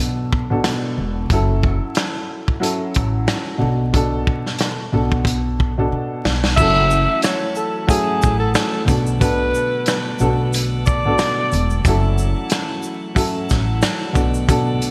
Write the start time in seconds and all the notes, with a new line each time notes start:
Already playing: B1 B2 B3 D4 A4
0.00 closed hi-hat
0.32 kick
0.50 B2 B3 D4 A4
0.64 cross-stick, snare, closed hi-hat
0.98 E1
1.30 F#1 F#3 C#4 E4 A4, kick, closed hi-hat
1.63 kick
1.95 cross-stick, snare, closed hi-hat
2.48 kick
2.60 F#3 C#4 E4 A4, closed hi-hat
2.94 A1, kick, closed hi-hat
3.28 cross-stick, snare, closed hi-hat
3.58 B1 B2 B3 D4 A4
3.93 B2 B3 D4 A4, kick, closed hi-hat
4.27 kick
4.46 snare
4.59 cross-stick, snare, closed hi-hat
4.92 B1 B2 B3 D4 A4
5.12 kick
5.25 kick, closed hi-hat
5.60 kick
5.78 B2 B3 D4 A4
5.92 B2
6.25 B1, snare
6.44 snare
6.56 F#1 E3 F#3 A3 C#4 E4 F#4 E5, kick, crash, shaker
6.60 A4
6.91 shaker
7.22 C#5, cross-stick, snare, closed hi-hat, shaker
7.55 A4, shaker
7.87 F#3 A3 C#4 E4 G#4, kick, closed hi-hat, shaker
8.22 A1, kick, shaker
8.39 A4
8.55 A4, cross-stick, snare, closed hi-hat, shaker
8.85 B1 B2 B3 D4 A4, kick, shaker
8.89 D3 B3, closed hi-hat, shaker
9.06 shaker
9.20 B2 B3 D4 A4 B4, kick, closed hi-hat, shaker
9.54 shaker
9.86 cross-stick, snare, closed hi-hat, shaker
10.19 B1 B2 B3 D4 A4, shaker
10.53 closed hi-hat, shaker
10.86 D5, kick, shaker
11.05 B2 B3 D4 A4
11.18 cross-stick, snare, closed hi-hat, shaker
11.52 E1, closed hi-hat, shaker
11.53 shaker
11.70 shaker
11.85 F#1 E3 F#3 C#4 E4 A4, kick, closed hi-hat, shaker
12.18 shaker
12.50 cross-stick, snare, closed hi-hat, shaker
12.82 shaker
13.15 F#3 C#4 E4 A4, kick, closed hi-hat, shaker
13.49 A1, kick, snare, shaker
13.82 cross-stick, snare, closed hi-hat, shaker
14.13 B1 B2 D3 B3 D4 F#4 A4, kick, shaker
14.17 shaker
14.34 shaker
14.48 B2 B3 D4 A4, kick, closed hi-hat, shaker
14.82 closed hi-hat, shaker